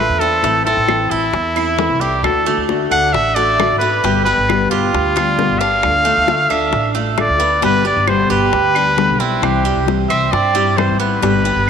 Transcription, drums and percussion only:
0.44 high bongo
0.66 high bongo
0.88 high bongo, claves
1.11 high bongo
1.34 high bongo
1.57 claves
1.79 high bongo, low bongo
2.01 high bongo
2.24 high bongo, claves
2.47 high bongo
2.69 high bongo
2.92 high bongo, claves
3.14 high bongo
3.38 high bongo
3.60 high bongo, low bongo, claves
4.05 high bongo
4.27 high bongo
4.49 high bongo, claves
4.73 high bongo
4.95 high bongo
5.17 high bongo, claves
5.39 low bongo
5.61 low bongo
5.83 high bongo, claves
6.06 high bongo
6.28 high bongo
6.50 high bongo, claves
6.73 high bongo
6.95 high bongo
7.18 high bongo, low bongo, claves
7.63 high bongo
7.85 high bongo
8.07 high bongo, claves
8.30 high bongo
8.53 high bongo
8.75 claves
8.98 high bongo, low bongo
9.21 high bongo
9.43 high bongo, claves
9.65 high bongo
9.88 high bongo
10.10 high bongo, claves
10.33 high bongo
10.56 high bongo
10.78 high bongo, low bongo, claves
11.23 high bongo
11.46 high bongo

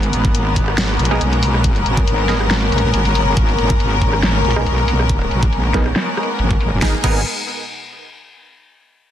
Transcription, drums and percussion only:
0.03 closed hi-hat
0.13 closed hi-hat
0.25 kick
0.35 closed hi-hat
0.56 kick, closed hi-hat
0.68 cross-stick
0.78 snare, closed hi-hat
0.99 closed hi-hat
1.05 closed hi-hat
1.11 cross-stick
1.21 closed hi-hat
1.33 closed hi-hat
1.43 open hi-hat
1.54 cross-stick
1.64 kick, closed hi-hat
1.76 closed hi-hat
1.86 closed hi-hat
1.97 kick
2.07 closed hi-hat
2.29 snare, closed hi-hat
2.41 cross-stick
2.51 snare, closed hi-hat
2.72 closed hi-hat
2.78 closed hi-hat
2.94 closed hi-hat
3.05 closed hi-hat
3.15 open hi-hat
3.37 kick, closed hi-hat
3.49 closed hi-hat
3.58 closed hi-hat
3.70 kick
3.80 closed hi-hat
4.02 kick, closed hi-hat
4.13 cross-stick
4.23 snare, closed hi-hat
4.45 closed hi-hat
4.51 closed hi-hat
4.56 cross-stick
4.66 closed hi-hat
4.78 closed hi-hat
4.88 open hi-hat
5.00 cross-stick
5.09 kick, closed hi-hat
5.21 closed hi-hat
5.31 closed hi-hat
5.43 kick
5.53 closed hi-hat
5.74 kick, snare, closed hi-hat
5.86 cross-stick
5.96 snare, closed hi-hat
6.17 cross-stick, closed hi-hat
6.23 closed hi-hat
6.39 closed hi-hat
6.50 kick, closed hi-hat
6.61 open hi-hat
6.82 kick, snare
7.04 kick, crash

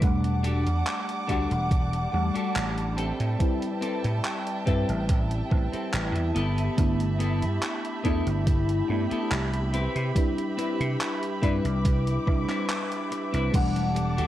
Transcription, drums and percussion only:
0.02 kick, closed hi-hat
0.24 closed hi-hat
0.44 closed hi-hat
0.67 closed hi-hat
0.87 clap, closed hi-hat
1.09 closed hi-hat
1.29 kick, closed hi-hat
1.51 closed hi-hat
1.71 kick, closed hi-hat
1.93 closed hi-hat
2.36 closed hi-hat
2.56 clap, closed hi-hat
2.78 closed hi-hat
2.98 closed hi-hat
3.20 closed hi-hat
3.40 kick, closed hi-hat
3.62 closed hi-hat
3.82 closed hi-hat
4.04 closed hi-hat
4.25 clap, closed hi-hat
4.47 closed hi-hat
4.67 kick, closed hi-hat
4.89 closed hi-hat
5.09 kick, closed hi-hat
5.31 closed hi-hat
5.51 kick
5.73 closed hi-hat
5.93 clap, closed hi-hat
6.16 closed hi-hat
6.36 closed hi-hat
6.58 closed hi-hat
6.78 kick, closed hi-hat
7.00 closed hi-hat
7.20 closed hi-hat
7.42 closed hi-hat
7.63 clap, closed hi-hat
7.85 closed hi-hat
8.05 kick, closed hi-hat
8.27 closed hi-hat
8.47 kick, closed hi-hat
8.69 closed hi-hat
9.11 closed hi-hat
9.32 clap, closed hi-hat
9.54 closed hi-hat
9.74 closed hi-hat
9.96 closed hi-hat
10.16 kick, closed hi-hat
10.38 closed hi-hat
10.59 closed hi-hat
10.81 closed hi-hat
11.01 clap, closed hi-hat
11.23 closed hi-hat
11.43 kick, closed hi-hat
11.65 closed hi-hat
11.85 kick, closed hi-hat
12.07 closed hi-hat
12.27 kick
12.49 clap, closed hi-hat
12.70 clap, closed hi-hat
12.92 closed hi-hat
13.12 closed hi-hat
13.34 closed hi-hat
13.54 kick, closed hi-hat, crash
13.76 closed hi-hat
13.96 closed hi-hat
14.18 closed hi-hat

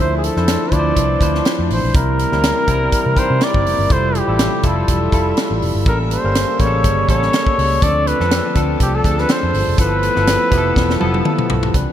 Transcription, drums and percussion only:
0.24 closed hi-hat
0.36 snare
0.48 snare, closed hi-hat
0.72 kick, closed hi-hat
0.96 kick, closed hi-hat
1.21 kick, closed hi-hat
1.35 snare
1.45 snare, closed hi-hat
1.70 open hi-hat
1.94 kick, closed hi-hat
2.19 closed hi-hat
2.32 snare
2.43 snare, closed hi-hat
2.68 kick, closed hi-hat
2.92 kick, closed hi-hat
3.17 kick, closed hi-hat
3.41 snare, closed hi-hat
3.54 kick
3.66 open hi-hat
3.90 kick, closed hi-hat
4.15 closed hi-hat
4.39 snare, closed hi-hat
4.63 kick, closed hi-hat
4.88 kick, closed hi-hat
5.12 kick, closed hi-hat
5.37 snare, closed hi-hat
5.62 open hi-hat
5.86 kick, closed hi-hat
6.11 closed hi-hat
6.35 snare, closed hi-hat
6.59 kick, closed hi-hat
6.84 kick, closed hi-hat
7.09 kick, closed hi-hat
7.23 snare
7.33 snare, closed hi-hat
7.46 kick
7.59 open hi-hat
7.82 kick, closed hi-hat
8.07 closed hi-hat
8.20 snare
8.31 snare, closed hi-hat
8.55 kick, closed hi-hat
8.80 kick, closed hi-hat
9.04 kick, closed hi-hat
9.18 snare
9.29 snare, closed hi-hat
9.54 open hi-hat
9.78 kick, closed hi-hat
10.03 closed hi-hat
10.16 snare
10.27 snare, closed hi-hat
10.52 kick, closed hi-hat
10.76 kick, snare
10.90 snare
11.01 high tom
11.14 high tom
11.25 mid tom
11.39 mid tom
11.50 floor tom
11.63 floor tom
11.74 kick, closed hi-hat

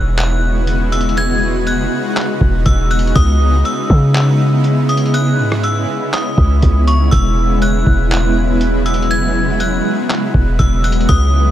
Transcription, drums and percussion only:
0.18 clap, closed hi-hat
0.67 closed hi-hat
0.92 closed hi-hat
1.01 closed hi-hat
1.09 closed hi-hat
1.17 closed hi-hat
1.67 closed hi-hat
2.16 clap, closed hi-hat
2.41 kick
2.66 kick, closed hi-hat
2.91 closed hi-hat
2.99 closed hi-hat
3.07 closed hi-hat
3.16 kick, closed hi-hat
3.65 closed hi-hat
3.90 kick
4.15 clap, closed hi-hat
4.64 closed hi-hat
4.89 closed hi-hat
4.97 closed hi-hat
5.06 closed hi-hat
5.14 closed hi-hat
5.52 cross-stick
5.63 closed hi-hat
6.13 clap, closed hi-hat
6.38 kick
6.62 kick, closed hi-hat
6.87 closed hi-hat
7.12 kick, closed hi-hat
7.62 closed hi-hat
7.87 kick
8.11 clap, closed hi-hat
8.61 closed hi-hat
8.86 closed hi-hat
8.94 closed hi-hat
9.02 closed hi-hat
9.11 closed hi-hat
9.60 closed hi-hat
10.10 clap, closed hi-hat
10.34 kick
10.59 kick, closed hi-hat
10.84 closed hi-hat
10.92 closed hi-hat
11.01 closed hi-hat
11.09 kick, closed hi-hat

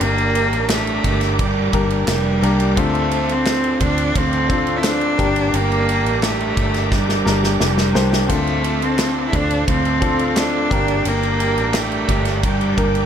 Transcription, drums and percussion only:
0.01 ride
0.18 ride
0.35 ride
0.53 ride
0.70 snare, clap, ride
0.87 ride
1.04 kick, ride
1.21 snare, ride
1.39 kick, ride
1.73 kick, ride
1.90 ride
2.08 snare, clap, ride
2.43 ride
2.60 ride
2.77 kick, ride
2.95 ride
3.11 ride
3.29 ride
3.46 snare, clap, ride
3.64 ride
3.80 kick, ride
3.98 ride
4.15 kick, ride
4.33 ride
4.50 kick, ride
4.67 ride
4.84 snare, clap, ride
5.01 ride
5.19 kick, ride
5.36 ride
5.54 ride
5.72 ride
5.89 ride
6.06 ride
6.23 snare, clap, ride
6.40 ride
6.57 kick, ride
6.74 snare, ride
6.92 kick, snare
7.09 snare
7.26 snare
7.44 snare
7.60 snare
7.78 snare
7.95 snare
8.13 snare
8.30 kick, hi-hat pedal, ride
8.47 ride
8.64 ride
8.82 ride
8.99 snare, clap, ride
9.33 kick, ride
9.51 ride
9.68 kick, ride
9.85 ride
10.02 kick, ride
10.19 ride
10.37 snare, clap, ride
10.71 kick, ride
10.88 ride
11.05 ride
11.23 ride
11.40 ride
11.58 ride
11.74 snare, clap, ride
11.92 ride
12.09 kick, ride
12.25 snare, ride
12.43 kick, ride
12.61 ride
12.78 kick, ride
12.95 ride

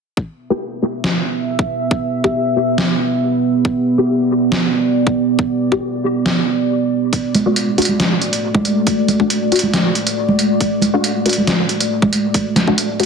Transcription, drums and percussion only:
0.17 kick
1.04 snare
1.59 kick
1.91 kick
2.24 kick
2.78 snare
3.65 kick
4.52 snare
5.07 kick
5.39 kick
5.72 kick
6.26 snare
7.13 kick, closed hi-hat
7.35 closed hi-hat, high conga
7.56 closed hi-hat
7.78 closed hi-hat
7.82 closed hi-hat
7.85 closed hi-hat, high conga
8.00 snare, closed hi-hat
8.22 closed hi-hat
8.33 closed hi-hat
8.55 kick, high conga
8.65 closed hi-hat
8.87 kick, closed hi-hat
9.08 closed hi-hat, high conga
9.20 kick
9.30 closed hi-hat
9.52 closed hi-hat
9.56 closed hi-hat
9.59 closed hi-hat
9.63 high conga
9.74 snare, closed hi-hat
9.95 closed hi-hat
10.07 closed hi-hat
10.29 high conga
10.39 closed hi-hat
10.61 kick, closed hi-hat
10.82 closed hi-hat, high conga
11.04 closed hi-hat
11.26 closed hi-hat
11.29 closed hi-hat
11.33 closed hi-hat
11.38 high conga
11.47 snare, closed hi-hat
11.69 closed hi-hat
11.80 closed hi-hat
12.02 kick, high conga
12.13 closed hi-hat
12.34 kick, closed hi-hat
12.56 snare, closed hi-hat, high conga
12.68 kick
12.78 closed hi-hat
13.00 closed hi-hat

